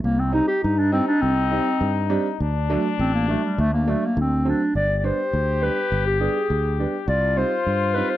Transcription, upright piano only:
X:1
M:2/4
L:1/16
Q:1/4=102
K:none
V:1 name="Upright piano"
z2 [G,C_E] z3 [G,CE] z | z2 [G,C_E] z3 [G,CD] z | z2 [^F,A,D] z3 [F,A,D] z | z2 [^F,A,D] z3 [F,A,C] z |
z2 [G,B,D] z3 [G,B,D] z | z2 [G,B,D] z3 [G,B,D] z | z2 [G,C_E] z3 [G,CE] z |]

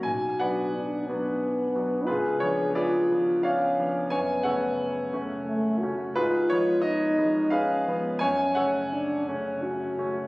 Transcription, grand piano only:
X:1
M:3/4
L:1/8
Q:1/4=88
K:F#m
V:1 name="Grand piano"
g [Bdf]4 z | [^EGB] c [GBd]2 [cd^e]2 | [cg] [Acf]4 z | [=F_A_c] ^c ^d2 [A_c=f]2 |
[cg] [Acf]4 z |]
V:2 name="Grand piano"
B,,, [F,B,D]2 [F,B,D]2 [F,B,D] | C,, [^E,B,D]2 [E,B,D]2 [E,B,D] | F,, [C,A,C]2 [C,A,C]2 [C,A,C] | _A,, [=F,_A,_C]2 [F,A,C]2 [F,A,C] |
F,, [C,A,C]2 [C,A,C]2 [C,A,C] |]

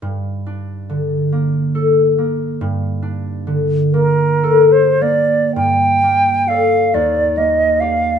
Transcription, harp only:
X:1
M:6/8
L:1/8
Q:3/8=45
K:Gm
V:1 name="Harp"
G,, D D, B, A B, | G,, D D, B, A B, | G,, B, [Ad] E,, B, [Gd] |]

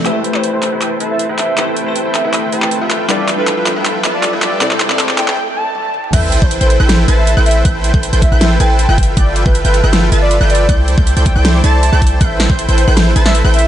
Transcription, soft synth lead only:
X:1
M:4/4
L:1/16
Q:1/4=158
K:Am
V:1 name="Soft synth lead"
e3 c z c2 z4 e2 z e2- | e z4 z e4 g4- g z | d2 z B z B2 z4 d2 z d2- | d z4 z g4 a4- a z |
e3 c z c2 z4 e2 z e2- | e z4 z e3 z g4- g z | d2 z B z B2 z4 d2 z d2- | d z4 z g3 z a6 |
e2 z c z c2 z4 e2 z e2 |]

